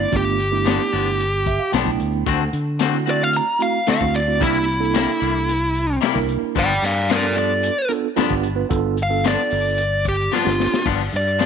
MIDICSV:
0, 0, Header, 1, 7, 480
1, 0, Start_track
1, 0, Tempo, 536673
1, 108, Time_signature, 4, 2, 24, 8
1, 10247, End_track
2, 0, Start_track
2, 0, Title_t, "Lead electric guitar"
2, 0, Program_c, 0, 29
2, 0, Note_on_c, 0, 74, 85
2, 116, Note_off_c, 0, 74, 0
2, 147, Note_on_c, 0, 67, 80
2, 1530, Note_off_c, 0, 67, 0
2, 2775, Note_on_c, 0, 74, 89
2, 2891, Note_off_c, 0, 74, 0
2, 2891, Note_on_c, 0, 77, 79
2, 2994, Note_off_c, 0, 77, 0
2, 3010, Note_on_c, 0, 82, 94
2, 3230, Note_off_c, 0, 82, 0
2, 3239, Note_on_c, 0, 77, 90
2, 3465, Note_off_c, 0, 77, 0
2, 3491, Note_on_c, 0, 77, 90
2, 3710, Note_off_c, 0, 77, 0
2, 3716, Note_on_c, 0, 74, 84
2, 3943, Note_off_c, 0, 74, 0
2, 3957, Note_on_c, 0, 64, 91
2, 5355, Note_off_c, 0, 64, 0
2, 5891, Note_on_c, 0, 74, 85
2, 5896, Note_on_c, 0, 79, 88
2, 6110, Note_off_c, 0, 74, 0
2, 6113, Note_off_c, 0, 79, 0
2, 6121, Note_on_c, 0, 74, 69
2, 6135, Note_on_c, 0, 77, 84
2, 6336, Note_off_c, 0, 74, 0
2, 6353, Note_off_c, 0, 77, 0
2, 6364, Note_on_c, 0, 70, 66
2, 6371, Note_on_c, 0, 74, 81
2, 6578, Note_off_c, 0, 70, 0
2, 6591, Note_off_c, 0, 74, 0
2, 6605, Note_on_c, 0, 74, 107
2, 7061, Note_off_c, 0, 74, 0
2, 8075, Note_on_c, 0, 77, 94
2, 8284, Note_off_c, 0, 77, 0
2, 8300, Note_on_c, 0, 74, 91
2, 8983, Note_off_c, 0, 74, 0
2, 9022, Note_on_c, 0, 67, 74
2, 9238, Note_off_c, 0, 67, 0
2, 9253, Note_on_c, 0, 65, 104
2, 9708, Note_off_c, 0, 65, 0
2, 9986, Note_on_c, 0, 74, 96
2, 10247, Note_off_c, 0, 74, 0
2, 10247, End_track
3, 0, Start_track
3, 0, Title_t, "Tine electric piano"
3, 0, Program_c, 1, 4
3, 105, Note_on_c, 1, 59, 70
3, 106, Note_on_c, 1, 57, 77
3, 106, Note_on_c, 1, 62, 73
3, 111, Note_on_c, 1, 65, 83
3, 339, Note_off_c, 1, 59, 0
3, 340, Note_off_c, 1, 57, 0
3, 340, Note_off_c, 1, 62, 0
3, 342, Note_off_c, 1, 65, 0
3, 464, Note_on_c, 1, 57, 68
3, 467, Note_on_c, 1, 62, 70
3, 469, Note_on_c, 1, 59, 71
3, 469, Note_on_c, 1, 64, 81
3, 1086, Note_off_c, 1, 57, 0
3, 1088, Note_off_c, 1, 62, 0
3, 1089, Note_off_c, 1, 59, 0
3, 1089, Note_off_c, 1, 64, 0
3, 1315, Note_on_c, 1, 76, 63
3, 1423, Note_off_c, 1, 76, 0
3, 1427, Note_on_c, 1, 77, 67
3, 1538, Note_off_c, 1, 77, 0
3, 1541, Note_on_c, 1, 79, 66
3, 1648, Note_on_c, 1, 57, 79
3, 1651, Note_on_c, 1, 59, 67
3, 1653, Note_on_c, 1, 62, 73
3, 1654, Note_on_c, 1, 64, 83
3, 1989, Note_off_c, 1, 79, 0
3, 2016, Note_off_c, 1, 57, 0
3, 2018, Note_off_c, 1, 59, 0
3, 2019, Note_off_c, 1, 62, 0
3, 2019, Note_off_c, 1, 64, 0
3, 2620, Note_on_c, 1, 57, 69
3, 2620, Note_on_c, 1, 60, 60
3, 2624, Note_on_c, 1, 64, 63
3, 2627, Note_on_c, 1, 66, 78
3, 2700, Note_off_c, 1, 57, 0
3, 2700, Note_off_c, 1, 60, 0
3, 2702, Note_off_c, 1, 64, 0
3, 2703, Note_off_c, 1, 66, 0
3, 2744, Note_on_c, 1, 57, 75
3, 2745, Note_on_c, 1, 60, 67
3, 2747, Note_on_c, 1, 64, 67
3, 2750, Note_on_c, 1, 66, 77
3, 3055, Note_off_c, 1, 57, 0
3, 3056, Note_off_c, 1, 60, 0
3, 3057, Note_off_c, 1, 64, 0
3, 3058, Note_off_c, 1, 66, 0
3, 3209, Note_on_c, 1, 57, 83
3, 3212, Note_on_c, 1, 60, 65
3, 3214, Note_on_c, 1, 64, 76
3, 3221, Note_on_c, 1, 66, 84
3, 3372, Note_off_c, 1, 57, 0
3, 3374, Note_off_c, 1, 60, 0
3, 3375, Note_off_c, 1, 64, 0
3, 3378, Note_off_c, 1, 66, 0
3, 3458, Note_on_c, 1, 57, 82
3, 3459, Note_on_c, 1, 64, 68
3, 3463, Note_on_c, 1, 60, 78
3, 3465, Note_on_c, 1, 69, 87
3, 3539, Note_off_c, 1, 57, 0
3, 3539, Note_off_c, 1, 64, 0
3, 3542, Note_off_c, 1, 60, 0
3, 3543, Note_off_c, 1, 69, 0
3, 3589, Note_on_c, 1, 57, 79
3, 3592, Note_on_c, 1, 60, 69
3, 3592, Note_on_c, 1, 64, 73
3, 3595, Note_on_c, 1, 66, 77
3, 3742, Note_off_c, 1, 57, 0
3, 3743, Note_off_c, 1, 60, 0
3, 3743, Note_off_c, 1, 64, 0
3, 3745, Note_off_c, 1, 66, 0
3, 3824, Note_on_c, 1, 57, 60
3, 3827, Note_on_c, 1, 66, 77
3, 3828, Note_on_c, 1, 60, 63
3, 3828, Note_on_c, 1, 64, 63
3, 3901, Note_off_c, 1, 57, 0
3, 3903, Note_off_c, 1, 66, 0
3, 3904, Note_off_c, 1, 60, 0
3, 3904, Note_off_c, 1, 64, 0
3, 3926, Note_on_c, 1, 58, 85
3, 3929, Note_on_c, 1, 64, 74
3, 3931, Note_on_c, 1, 62, 73
3, 3932, Note_on_c, 1, 67, 85
3, 4168, Note_off_c, 1, 58, 0
3, 4170, Note_off_c, 1, 64, 0
3, 4171, Note_off_c, 1, 62, 0
3, 4171, Note_off_c, 1, 67, 0
3, 4292, Note_on_c, 1, 58, 74
3, 4295, Note_on_c, 1, 62, 69
3, 4295, Note_on_c, 1, 64, 69
3, 4297, Note_on_c, 1, 69, 88
3, 4920, Note_off_c, 1, 58, 0
3, 4921, Note_off_c, 1, 62, 0
3, 4921, Note_off_c, 1, 64, 0
3, 4922, Note_off_c, 1, 69, 0
3, 5492, Note_on_c, 1, 58, 79
3, 5492, Note_on_c, 1, 64, 82
3, 5496, Note_on_c, 1, 62, 72
3, 5496, Note_on_c, 1, 70, 101
3, 5858, Note_off_c, 1, 58, 0
3, 5858, Note_off_c, 1, 64, 0
3, 5860, Note_off_c, 1, 62, 0
3, 5860, Note_off_c, 1, 70, 0
3, 6461, Note_on_c, 1, 59, 70
3, 6466, Note_on_c, 1, 65, 59
3, 6468, Note_on_c, 1, 62, 69
3, 6469, Note_on_c, 1, 69, 80
3, 6541, Note_off_c, 1, 59, 0
3, 6543, Note_off_c, 1, 65, 0
3, 6544, Note_off_c, 1, 62, 0
3, 6544, Note_off_c, 1, 69, 0
3, 6581, Note_on_c, 1, 65, 71
3, 6582, Note_on_c, 1, 59, 78
3, 6583, Note_on_c, 1, 69, 90
3, 6587, Note_on_c, 1, 62, 71
3, 6894, Note_off_c, 1, 65, 0
3, 6895, Note_off_c, 1, 59, 0
3, 6895, Note_off_c, 1, 69, 0
3, 6897, Note_off_c, 1, 62, 0
3, 7056, Note_on_c, 1, 59, 92
3, 7056, Note_on_c, 1, 62, 77
3, 7056, Note_on_c, 1, 65, 71
3, 7062, Note_on_c, 1, 69, 99
3, 7217, Note_off_c, 1, 59, 0
3, 7217, Note_off_c, 1, 62, 0
3, 7217, Note_off_c, 1, 65, 0
3, 7220, Note_off_c, 1, 69, 0
3, 7297, Note_on_c, 1, 65, 93
3, 7302, Note_on_c, 1, 59, 96
3, 7302, Note_on_c, 1, 62, 97
3, 7303, Note_on_c, 1, 69, 100
3, 7379, Note_off_c, 1, 65, 0
3, 7381, Note_off_c, 1, 59, 0
3, 7382, Note_off_c, 1, 62, 0
3, 7382, Note_off_c, 1, 69, 0
3, 7412, Note_on_c, 1, 59, 109
3, 7413, Note_on_c, 1, 65, 91
3, 7415, Note_on_c, 1, 62, 95
3, 7423, Note_on_c, 1, 67, 106
3, 7574, Note_off_c, 1, 59, 0
3, 7575, Note_off_c, 1, 65, 0
3, 7576, Note_off_c, 1, 62, 0
3, 7579, Note_off_c, 1, 67, 0
3, 7648, Note_on_c, 1, 59, 90
3, 7652, Note_on_c, 1, 62, 74
3, 7653, Note_on_c, 1, 65, 78
3, 7657, Note_on_c, 1, 71, 93
3, 7735, Note_off_c, 1, 59, 0
3, 7736, Note_off_c, 1, 62, 0
3, 7737, Note_off_c, 1, 65, 0
3, 7739, Note_off_c, 1, 71, 0
3, 7774, Note_on_c, 1, 59, 101
3, 7775, Note_on_c, 1, 62, 83
3, 7780, Note_on_c, 1, 65, 91
3, 7783, Note_on_c, 1, 69, 117
3, 8013, Note_off_c, 1, 59, 0
3, 8014, Note_off_c, 1, 62, 0
3, 8016, Note_off_c, 1, 65, 0
3, 8018, Note_off_c, 1, 69, 0
3, 8137, Note_on_c, 1, 62, 68
3, 8138, Note_on_c, 1, 59, 82
3, 8140, Note_on_c, 1, 65, 66
3, 8142, Note_on_c, 1, 69, 97
3, 8764, Note_off_c, 1, 62, 0
3, 8765, Note_off_c, 1, 59, 0
3, 8766, Note_off_c, 1, 65, 0
3, 8767, Note_off_c, 1, 69, 0
3, 9345, Note_on_c, 1, 59, 76
3, 9348, Note_on_c, 1, 65, 61
3, 9348, Note_on_c, 1, 67, 89
3, 9349, Note_on_c, 1, 62, 70
3, 9707, Note_off_c, 1, 59, 0
3, 9709, Note_off_c, 1, 62, 0
3, 9709, Note_off_c, 1, 65, 0
3, 9709, Note_off_c, 1, 67, 0
3, 10247, End_track
4, 0, Start_track
4, 0, Title_t, "Clean electric guitar"
4, 0, Program_c, 2, 27
4, 578, Note_on_c, 2, 43, 69
4, 586, Note_on_c, 2, 53, 61
4, 589, Note_on_c, 2, 59, 77
4, 597, Note_on_c, 2, 62, 82
4, 727, Note_off_c, 2, 43, 0
4, 731, Note_off_c, 2, 53, 0
4, 732, Note_off_c, 2, 59, 0
4, 736, Note_off_c, 2, 62, 0
4, 828, Note_on_c, 2, 62, 56
4, 841, Note_on_c, 2, 59, 46
4, 854, Note_on_c, 2, 53, 47
4, 972, Note_off_c, 2, 62, 0
4, 978, Note_off_c, 2, 59, 0
4, 985, Note_off_c, 2, 53, 0
4, 1540, Note_on_c, 2, 43, 84
4, 1549, Note_on_c, 2, 53, 80
4, 1554, Note_on_c, 2, 59, 88
4, 1563, Note_on_c, 2, 62, 92
4, 1687, Note_off_c, 2, 43, 0
4, 1691, Note_off_c, 2, 53, 0
4, 1694, Note_off_c, 2, 59, 0
4, 1698, Note_off_c, 2, 62, 0
4, 2025, Note_on_c, 2, 50, 84
4, 2028, Note_on_c, 2, 57, 80
4, 2037, Note_on_c, 2, 60, 79
4, 2044, Note_on_c, 2, 66, 81
4, 2169, Note_off_c, 2, 50, 0
4, 2171, Note_off_c, 2, 57, 0
4, 2175, Note_off_c, 2, 60, 0
4, 2179, Note_off_c, 2, 66, 0
4, 2499, Note_on_c, 2, 50, 78
4, 2507, Note_on_c, 2, 57, 79
4, 2512, Note_on_c, 2, 60, 74
4, 2519, Note_on_c, 2, 66, 93
4, 2646, Note_off_c, 2, 50, 0
4, 2650, Note_off_c, 2, 57, 0
4, 2653, Note_off_c, 2, 60, 0
4, 2656, Note_off_c, 2, 66, 0
4, 2735, Note_on_c, 2, 66, 51
4, 2749, Note_on_c, 2, 60, 42
4, 2761, Note_on_c, 2, 57, 44
4, 2884, Note_off_c, 2, 66, 0
4, 2891, Note_off_c, 2, 60, 0
4, 2897, Note_off_c, 2, 57, 0
4, 3464, Note_on_c, 2, 50, 79
4, 3468, Note_on_c, 2, 57, 84
4, 3474, Note_on_c, 2, 60, 77
4, 3479, Note_on_c, 2, 66, 79
4, 3608, Note_off_c, 2, 50, 0
4, 3610, Note_off_c, 2, 57, 0
4, 3614, Note_off_c, 2, 60, 0
4, 3616, Note_off_c, 2, 66, 0
4, 3938, Note_on_c, 2, 48, 62
4, 3946, Note_on_c, 2, 55, 72
4, 3952, Note_on_c, 2, 58, 76
4, 3959, Note_on_c, 2, 64, 85
4, 4085, Note_off_c, 2, 48, 0
4, 4089, Note_off_c, 2, 55, 0
4, 4092, Note_off_c, 2, 58, 0
4, 4096, Note_off_c, 2, 64, 0
4, 4416, Note_on_c, 2, 48, 74
4, 4422, Note_on_c, 2, 55, 67
4, 4428, Note_on_c, 2, 58, 83
4, 4435, Note_on_c, 2, 64, 75
4, 4564, Note_off_c, 2, 48, 0
4, 4567, Note_off_c, 2, 55, 0
4, 4570, Note_off_c, 2, 58, 0
4, 4574, Note_off_c, 2, 64, 0
4, 4653, Note_on_c, 2, 64, 59
4, 4668, Note_on_c, 2, 58, 52
4, 4679, Note_on_c, 2, 55, 45
4, 4803, Note_off_c, 2, 64, 0
4, 4810, Note_off_c, 2, 58, 0
4, 4816, Note_off_c, 2, 55, 0
4, 5374, Note_on_c, 2, 48, 89
4, 5380, Note_on_c, 2, 55, 92
4, 5388, Note_on_c, 2, 58, 89
4, 5393, Note_on_c, 2, 64, 93
4, 5523, Note_off_c, 2, 48, 0
4, 5526, Note_off_c, 2, 55, 0
4, 5531, Note_off_c, 2, 58, 0
4, 5533, Note_off_c, 2, 64, 0
4, 5860, Note_on_c, 2, 43, 73
4, 5868, Note_on_c, 2, 53, 80
4, 5876, Note_on_c, 2, 59, 76
4, 5876, Note_on_c, 2, 62, 91
4, 6007, Note_off_c, 2, 43, 0
4, 6010, Note_off_c, 2, 53, 0
4, 6014, Note_off_c, 2, 59, 0
4, 6014, Note_off_c, 2, 62, 0
4, 6336, Note_on_c, 2, 43, 71
4, 6344, Note_on_c, 2, 53, 65
4, 6351, Note_on_c, 2, 59, 83
4, 6355, Note_on_c, 2, 62, 81
4, 6485, Note_off_c, 2, 43, 0
4, 6489, Note_off_c, 2, 53, 0
4, 6492, Note_off_c, 2, 59, 0
4, 6494, Note_off_c, 2, 62, 0
4, 6574, Note_on_c, 2, 62, 59
4, 6588, Note_on_c, 2, 59, 46
4, 6601, Note_on_c, 2, 53, 41
4, 6724, Note_off_c, 2, 62, 0
4, 6731, Note_off_c, 2, 59, 0
4, 6737, Note_off_c, 2, 53, 0
4, 7302, Note_on_c, 2, 43, 94
4, 7306, Note_on_c, 2, 53, 94
4, 7314, Note_on_c, 2, 59, 107
4, 7315, Note_on_c, 2, 62, 103
4, 7448, Note_off_c, 2, 43, 0
4, 7450, Note_off_c, 2, 53, 0
4, 7454, Note_off_c, 2, 59, 0
4, 7455, Note_off_c, 2, 62, 0
4, 8265, Note_on_c, 2, 43, 79
4, 8270, Note_on_c, 2, 53, 70
4, 8278, Note_on_c, 2, 59, 75
4, 8280, Note_on_c, 2, 62, 83
4, 8410, Note_off_c, 2, 43, 0
4, 8413, Note_off_c, 2, 53, 0
4, 8417, Note_off_c, 2, 59, 0
4, 8418, Note_off_c, 2, 62, 0
4, 9228, Note_on_c, 2, 43, 73
4, 9232, Note_on_c, 2, 53, 80
4, 9240, Note_on_c, 2, 59, 81
4, 9244, Note_on_c, 2, 62, 89
4, 9373, Note_off_c, 2, 43, 0
4, 9375, Note_off_c, 2, 53, 0
4, 9379, Note_off_c, 2, 59, 0
4, 9381, Note_off_c, 2, 62, 0
4, 9703, Note_on_c, 2, 43, 69
4, 9710, Note_on_c, 2, 53, 65
4, 9713, Note_on_c, 2, 59, 68
4, 9721, Note_on_c, 2, 62, 75
4, 9851, Note_off_c, 2, 43, 0
4, 9854, Note_off_c, 2, 53, 0
4, 9856, Note_off_c, 2, 59, 0
4, 9860, Note_off_c, 2, 62, 0
4, 10182, Note_on_c, 2, 43, 64
4, 10185, Note_on_c, 2, 53, 66
4, 10190, Note_on_c, 2, 59, 58
4, 10199, Note_on_c, 2, 62, 68
4, 10247, Note_off_c, 2, 43, 0
4, 10247, Note_off_c, 2, 53, 0
4, 10247, Note_off_c, 2, 59, 0
4, 10247, Note_off_c, 2, 62, 0
4, 10247, End_track
5, 0, Start_track
5, 0, Title_t, "Fingered electric bass"
5, 0, Program_c, 3, 33
5, 116, Note_on_c, 3, 31, 110
5, 690, Note_off_c, 3, 31, 0
5, 834, Note_on_c, 3, 31, 91
5, 1409, Note_off_c, 3, 31, 0
5, 1553, Note_on_c, 3, 35, 92
5, 1765, Note_off_c, 3, 35, 0
5, 1790, Note_on_c, 3, 38, 79
5, 2004, Note_off_c, 3, 38, 0
5, 2027, Note_on_c, 3, 38, 114
5, 2219, Note_off_c, 3, 38, 0
5, 2263, Note_on_c, 3, 50, 84
5, 3034, Note_off_c, 3, 50, 0
5, 3586, Note_on_c, 3, 38, 100
5, 3949, Note_on_c, 3, 36, 104
5, 3963, Note_off_c, 3, 38, 0
5, 4525, Note_off_c, 3, 36, 0
5, 4666, Note_on_c, 3, 36, 89
5, 5340, Note_off_c, 3, 36, 0
5, 5508, Note_on_c, 3, 36, 96
5, 5699, Note_off_c, 3, 36, 0
5, 5866, Note_on_c, 3, 31, 116
5, 6058, Note_off_c, 3, 31, 0
5, 6102, Note_on_c, 3, 43, 84
5, 6875, Note_off_c, 3, 43, 0
5, 7431, Note_on_c, 3, 31, 108
5, 7718, Note_off_c, 3, 31, 0
5, 7786, Note_on_c, 3, 31, 110
5, 8365, Note_off_c, 3, 31, 0
5, 8517, Note_on_c, 3, 31, 97
5, 9189, Note_off_c, 3, 31, 0
5, 9360, Note_on_c, 3, 31, 96
5, 9549, Note_off_c, 3, 31, 0
5, 9711, Note_on_c, 3, 31, 104
5, 9903, Note_off_c, 3, 31, 0
5, 9954, Note_on_c, 3, 43, 81
5, 10247, Note_off_c, 3, 43, 0
5, 10247, End_track
6, 0, Start_track
6, 0, Title_t, "Muted fingered electric bass strokes"
6, 3471, Note_on_c, 9, 29, 40
6, 3560, Note_off_c, 9, 29, 0
6, 5746, Note_on_c, 9, 29, 38
6, 5835, Note_off_c, 9, 29, 0
6, 7314, Note_on_c, 9, 29, 40
6, 7404, Note_off_c, 9, 29, 0
6, 9598, Note_on_c, 9, 29, 38
6, 9688, Note_off_c, 9, 29, 0
6, 10247, End_track
7, 0, Start_track
7, 0, Title_t, "Drums"
7, 114, Note_on_c, 9, 36, 97
7, 117, Note_on_c, 9, 42, 76
7, 203, Note_off_c, 9, 36, 0
7, 206, Note_off_c, 9, 42, 0
7, 357, Note_on_c, 9, 42, 57
7, 446, Note_off_c, 9, 42, 0
7, 592, Note_on_c, 9, 42, 84
7, 604, Note_on_c, 9, 38, 115
7, 681, Note_off_c, 9, 42, 0
7, 694, Note_off_c, 9, 38, 0
7, 835, Note_on_c, 9, 46, 71
7, 924, Note_off_c, 9, 46, 0
7, 1077, Note_on_c, 9, 42, 76
7, 1167, Note_off_c, 9, 42, 0
7, 1310, Note_on_c, 9, 36, 75
7, 1312, Note_on_c, 9, 42, 60
7, 1399, Note_off_c, 9, 36, 0
7, 1401, Note_off_c, 9, 42, 0
7, 1548, Note_on_c, 9, 42, 79
7, 1561, Note_on_c, 9, 38, 105
7, 1638, Note_off_c, 9, 42, 0
7, 1650, Note_off_c, 9, 38, 0
7, 1667, Note_on_c, 9, 36, 82
7, 1756, Note_off_c, 9, 36, 0
7, 1787, Note_on_c, 9, 42, 60
7, 1876, Note_off_c, 9, 42, 0
7, 2026, Note_on_c, 9, 36, 104
7, 2026, Note_on_c, 9, 42, 84
7, 2115, Note_off_c, 9, 36, 0
7, 2116, Note_off_c, 9, 42, 0
7, 2264, Note_on_c, 9, 42, 67
7, 2354, Note_off_c, 9, 42, 0
7, 2499, Note_on_c, 9, 42, 87
7, 2511, Note_on_c, 9, 38, 103
7, 2588, Note_off_c, 9, 42, 0
7, 2601, Note_off_c, 9, 38, 0
7, 2743, Note_on_c, 9, 42, 63
7, 2833, Note_off_c, 9, 42, 0
7, 2981, Note_on_c, 9, 42, 78
7, 3071, Note_off_c, 9, 42, 0
7, 3221, Note_on_c, 9, 42, 65
7, 3311, Note_off_c, 9, 42, 0
7, 3460, Note_on_c, 9, 42, 74
7, 3473, Note_on_c, 9, 38, 97
7, 3550, Note_off_c, 9, 42, 0
7, 3562, Note_off_c, 9, 38, 0
7, 3585, Note_on_c, 9, 36, 81
7, 3675, Note_off_c, 9, 36, 0
7, 3706, Note_on_c, 9, 42, 53
7, 3795, Note_off_c, 9, 42, 0
7, 3945, Note_on_c, 9, 36, 102
7, 3947, Note_on_c, 9, 42, 79
7, 4034, Note_off_c, 9, 36, 0
7, 4037, Note_off_c, 9, 42, 0
7, 4186, Note_on_c, 9, 42, 60
7, 4275, Note_off_c, 9, 42, 0
7, 4423, Note_on_c, 9, 42, 83
7, 4435, Note_on_c, 9, 38, 118
7, 4512, Note_off_c, 9, 42, 0
7, 4525, Note_off_c, 9, 38, 0
7, 4666, Note_on_c, 9, 42, 54
7, 4755, Note_off_c, 9, 42, 0
7, 4909, Note_on_c, 9, 42, 72
7, 4998, Note_off_c, 9, 42, 0
7, 5143, Note_on_c, 9, 42, 63
7, 5232, Note_off_c, 9, 42, 0
7, 5384, Note_on_c, 9, 42, 73
7, 5396, Note_on_c, 9, 38, 98
7, 5473, Note_off_c, 9, 42, 0
7, 5486, Note_off_c, 9, 38, 0
7, 5505, Note_on_c, 9, 36, 79
7, 5515, Note_on_c, 9, 38, 35
7, 5594, Note_off_c, 9, 36, 0
7, 5605, Note_off_c, 9, 38, 0
7, 5622, Note_on_c, 9, 42, 57
7, 5712, Note_off_c, 9, 42, 0
7, 5865, Note_on_c, 9, 36, 101
7, 5865, Note_on_c, 9, 42, 74
7, 5954, Note_off_c, 9, 36, 0
7, 5954, Note_off_c, 9, 42, 0
7, 6108, Note_on_c, 9, 42, 69
7, 6121, Note_on_c, 9, 38, 40
7, 6198, Note_off_c, 9, 42, 0
7, 6210, Note_off_c, 9, 38, 0
7, 6348, Note_on_c, 9, 42, 86
7, 6361, Note_on_c, 9, 38, 117
7, 6438, Note_off_c, 9, 42, 0
7, 6450, Note_off_c, 9, 38, 0
7, 6590, Note_on_c, 9, 42, 58
7, 6679, Note_off_c, 9, 42, 0
7, 6826, Note_on_c, 9, 42, 89
7, 6915, Note_off_c, 9, 42, 0
7, 7066, Note_on_c, 9, 42, 62
7, 7155, Note_off_c, 9, 42, 0
7, 7309, Note_on_c, 9, 42, 85
7, 7321, Note_on_c, 9, 38, 102
7, 7398, Note_off_c, 9, 42, 0
7, 7411, Note_off_c, 9, 38, 0
7, 7427, Note_on_c, 9, 36, 91
7, 7517, Note_off_c, 9, 36, 0
7, 7543, Note_on_c, 9, 42, 57
7, 7633, Note_off_c, 9, 42, 0
7, 7785, Note_on_c, 9, 42, 79
7, 7788, Note_on_c, 9, 36, 107
7, 7874, Note_off_c, 9, 42, 0
7, 7877, Note_off_c, 9, 36, 0
7, 8026, Note_on_c, 9, 42, 65
7, 8116, Note_off_c, 9, 42, 0
7, 8267, Note_on_c, 9, 42, 90
7, 8279, Note_on_c, 9, 38, 116
7, 8356, Note_off_c, 9, 42, 0
7, 8369, Note_off_c, 9, 38, 0
7, 8504, Note_on_c, 9, 46, 74
7, 8594, Note_off_c, 9, 46, 0
7, 8746, Note_on_c, 9, 42, 75
7, 8835, Note_off_c, 9, 42, 0
7, 8986, Note_on_c, 9, 42, 55
7, 8990, Note_on_c, 9, 36, 73
7, 9076, Note_off_c, 9, 42, 0
7, 9080, Note_off_c, 9, 36, 0
7, 9240, Note_on_c, 9, 38, 59
7, 9330, Note_off_c, 9, 38, 0
7, 9362, Note_on_c, 9, 38, 63
7, 9451, Note_off_c, 9, 38, 0
7, 9481, Note_on_c, 9, 38, 80
7, 9571, Note_off_c, 9, 38, 0
7, 9603, Note_on_c, 9, 38, 94
7, 9692, Note_off_c, 9, 38, 0
7, 9708, Note_on_c, 9, 49, 86
7, 9710, Note_on_c, 9, 36, 101
7, 9798, Note_off_c, 9, 49, 0
7, 9800, Note_off_c, 9, 36, 0
7, 9947, Note_on_c, 9, 42, 63
7, 10037, Note_off_c, 9, 42, 0
7, 10190, Note_on_c, 9, 42, 81
7, 10202, Note_on_c, 9, 38, 106
7, 10247, Note_off_c, 9, 38, 0
7, 10247, Note_off_c, 9, 42, 0
7, 10247, End_track
0, 0, End_of_file